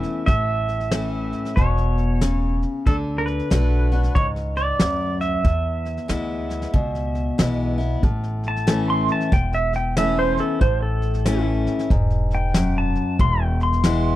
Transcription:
Already playing: steel-string acoustic guitar E2 E3 A3 C#4 E4, pedal steel guitar E5
0.03 snare
0.26 upright bass A1, steel-string acoustic guitar A2, pedal steel guitar E5, kick, snare
0.68 snare
0.80 snare
0.91 steel-string acoustic guitar E3 A3 C#4 E4, snare, hi-hat pedal
1.32 snare
1.45 snare
1.56 upright bass E1, steel-string acoustic guitar B2, pedal steel guitar C#5, kick, snare
1.77 snare
1.98 snare
2.21 steel-string acoustic guitar C#3, snare, hi-hat pedal
2.62 snare
2.86 upright bass D2, steel-string acoustic guitar D3, pedal steel guitar A4, kick, snare
3.18 pedal steel guitar A#4
3.26 pedal steel guitar B4, snare
3.39 snare
3.50 upright bass B1, steel-string acoustic guitar D3 A3 D4 F#4, snare, hi-hat pedal
3.92 steel-string acoustic guitar D4 F#4, snare
4.03 snare
4.15 upright bass C#2, steel-string acoustic guitar G#2, pedal steel guitar C#5, kick, snare
4.36 snare
4.56 pedal steel guitar D5, snare
4.79 upright bass D2, steel-string acoustic guitar F#2, snare, hi-hat pedal
5.21 pedal steel guitar E5, snare
5.44 upright bass E2, steel-string acoustic guitar E2, kick, snare
5.85 snare
5.97 snare
6.08 upright bass D2, steel-string acoustic guitar E3 G#3 B3 E4, snare, hi-hat pedal
6.50 snare
6.62 snare
6.74 upright bass C#2, steel-string acoustic guitar B2, kick, snare
6.95 snare
7.15 snare
7.38 upright bass B1, steel-string acoustic guitar E3 G#3 B3 E4, snare, hi-hat pedal
7.78 steel-string acoustic guitar B3 E4, snare
8.03 upright bass A1, steel-string acoustic guitar A2, kick, snare
8.23 snare
8.43 snare
8.48 pedal steel guitar A5
8.56 snare
8.67 steel-string acoustic guitar E3 A3 C#4 E4, snare, hi-hat pedal
8.90 pedal steel guitar C6
9.08 pedal steel guitar A5, snare
9.20 snare
9.32 upright bass E1, steel-string acoustic guitar E2, pedal steel guitar G5, kick, snare
9.53 pedal steel guitar E5, snare
9.73 pedal steel guitar G5, snare
9.97 steel-string acoustic guitar E3 A3 C#4 E4, pedal steel guitar E5, snare, hi-hat pedal
10.19 pedal steel guitar C5
10.37 pedal steel guitar A4, snare
10.61 upright bass A1, steel-string acoustic guitar A2, pedal steel guitar C5, kick, snare
10.82 pedal steel guitar A4
11.02 snare
11.14 snare
11.26 steel-string acoustic guitar E3 A3 C#4 E4, snare, hi-hat pedal
11.66 snare
11.79 snare
11.90 upright bass E1, steel-string acoustic guitar G#2, kick, snare
12.10 snare
12.31 pedal steel guitar G5, snare
12.54 steel-string acoustic guitar F#2, snare, hi-hat pedal
12.78 pedal steel guitar A5
12.95 snare
13.19 upright bass E1, steel-string acoustic guitar E2, pedal steel guitar C6, kick, snare
13.42 pedal steel guitar G5
13.60 pedal steel guitar C6, snare
13.73 snare
13.84 steel-string acoustic guitar E3 G#3 B3 E4, snare, hi-hat pedal

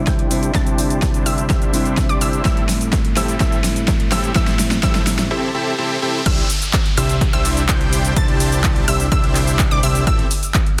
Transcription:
Already playing: clean electric guitar C3 G3 C4 D4 E4, riser
0.07 analog synth bass C2, supersaw synth D4 E4 G4 C5 G5, synth pluck G6, kick, snare, closed hi-hat, cabasa
0.19 closed hi-hat
0.30 clean electric guitar C3 G3 C4 D4 E4, open hi-hat, cabasa
0.43 closed hi-hat, cabasa
0.53 analog synth bass C2, clean electric guitar C3 G3 C4 D4 E4, supersaw synth D4 E4 G4 C5 A5, synth pluck A6, kick, snare, closed hi-hat, cabasa
0.67 closed hi-hat, cabasa
0.78 open hi-hat, cabasa
0.90 closed hi-hat, cabasa
1.02 kick, snare, closed hi-hat, cabasa
1.14 closed hi-hat, cabasa
1.26 analog synth bass C2, supersaw synth D4 E4 G4 C5 E5, synth pluck E6, open hi-hat, cabasa
1.38 closed hi-hat, cabasa
1.50 analog synth bass C2, supersaw synth D4 E4 G4 C5 E5, synth pluck E6, kick, snare, closed hi-hat, cabasa
1.62 closed hi-hat, cabasa
1.72 clean electric guitar C3 G3 C4 D4 E4, open hi-hat, cabasa
1.86 closed hi-hat, cabasa
1.97 kick, snare, closed hi-hat, cabasa
2.09 analog synth bass C2, supersaw synth D4 E4 G4 C5 D5, synth pluck D6, closed hi-hat, cabasa
2.21 analog synth bass C2, supersaw synth D4 E4 G4 C5 E5, synth pluck E6, open hi-hat, cabasa
2.33 closed hi-hat, cabasa
2.44 analog synth bass A1, clean electric guitar A2 G3 A3 C4 E4, supersaw synth C4 E4 G4 A4 E5, synth pluck E6, kick, snare, closed hi-hat, cabasa
2.57 closed hi-hat
2.69 snare, open hi-hat, cabasa
2.81 closed hi-hat, cabasa
2.93 kick, snare, closed hi-hat, cabasa
3.05 closed hi-hat
3.16 analog synth bass A1, supersaw synth C4 E4 G4 A4 E5, synth pluck E6, snare, open hi-hat, cabasa
3.28 closed hi-hat, cabasa
3.39 analog synth bass A1, clean electric guitar A2 G3 A3 C4 E4, supersaw synth C4 E4 G4 A4 E5, synth pluck E6, kick, snare, closed hi-hat, cabasa
3.52 closed hi-hat, cabasa
3.64 snare, open hi-hat, cabasa
3.76 closed hi-hat, cabasa
3.88 kick, snare, closed hi-hat, cabasa
4.00 closed hi-hat
4.12 analog synth bass A1, supersaw synth C4 E4 G4 A4 E5, synth pluck E6, snare, open hi-hat, cabasa
4.24 closed hi-hat, cabasa
4.34 analog synth bass A1, clean electric guitar A2 G3 A3 C4 E4, supersaw synth C4 E4 G4 A4 E5, synth pluck E6, kick, snare, closed hi-hat, cabasa
4.47 snare, closed hi-hat, cabasa
4.59 snare, open hi-hat, cabasa
4.71 snare, closed hi-hat, cabasa
4.82 analog synth bass A1, clean electric guitar A2 G3 A3 C4 E4, supersaw synth C4 E4 G4 A4 E5, synth pluck E6, kick, snare, closed hi-hat, cabasa
4.95 snare, closed hi-hat, cabasa
5.07 snare, open hi-hat, cabasa
5.19 snare, closed hi-hat, cabasa
5.31 supersaw synth C4 E4 G4 A4 E5
5.55 supersaw synth C4 E4 G4 A4 E5
5.78 supersaw synth C4 E4 G4 A4 E5
6.02 supersaw synth C4 E4 G4 A4 E5
6.26 analog synth bass C2, supersaw synth D4 E4 G4 C5 E5, synth pluck E6, kick, closed hi-hat, crash, ride, downlifter, cabasa
6.38 closed hi-hat
6.50 open hi-hat, ride, cabasa
6.62 closed hi-hat, cabasa
6.73 kick, clap, closed hi-hat, ride, cabasa
6.86 closed hi-hat
6.97 analog synth bass C2, supersaw synth D4 E4 G4 C5 E5, synth pluck E6, open hi-hat, ride, cabasa
7.09 closed hi-hat, cabasa
7.21 kick, closed hi-hat, ride, cabasa
7.33 analog synth bass C2, supersaw synth D4 E4 G4 C5 E5, synth pluck E6, closed hi-hat
7.45 open hi-hat, ride, cabasa
7.57 closed hi-hat, cabasa
7.69 analog synth bass C2, supersaw synth D4 E4 G4 C5 G5, synth pluck G6, kick, clap, closed hi-hat, ride, cabasa
7.81 closed hi-hat
7.93 open hi-hat, ride, cabasa
8.05 closed hi-hat, cabasa
8.16 analog synth bass C2, supersaw synth D4 E4 G4 C5 A5, synth pluck A6, kick, closed hi-hat, ride, cabasa
8.28 closed hi-hat
8.40 open hi-hat, ride, cabasa
8.52 closed hi-hat, cabasa
8.64 kick, clap, closed hi-hat, ride, cabasa
8.76 closed hi-hat
8.88 analog synth bass C2, supersaw synth D4 E4 G4 C5 E5, synth pluck E6, open hi-hat, ride, cabasa
9.00 closed hi-hat, cabasa
9.12 analog synth bass C2, supersaw synth D4 E4 G4 C5 E5, synth pluck E6, kick, closed hi-hat, ride, cabasa
9.24 closed hi-hat
9.35 clap, open hi-hat, ride, cabasa
9.47 closed hi-hat, cabasa
9.59 kick, clap, closed hi-hat, ride, cabasa
9.71 analog synth bass C2, supersaw synth D4 E4 G4 C5 D5, synth pluck D6, closed hi-hat
9.83 analog synth bass C2, supersaw synth D4 E4 G4 C5 E5, synth pluck E6, open hi-hat, ride, cabasa
9.95 closed hi-hat, cabasa
10.07 analog synth bass A1, supersaw synth C4 E4 G4 A4 E5, synth pluck E6, kick, closed hi-hat, ride, cabasa
10.19 closed hi-hat
10.31 open hi-hat, ride, cabasa
10.43 closed hi-hat, cabasa
10.54 kick, clap, closed hi-hat, ride, cabasa
10.66 closed hi-hat

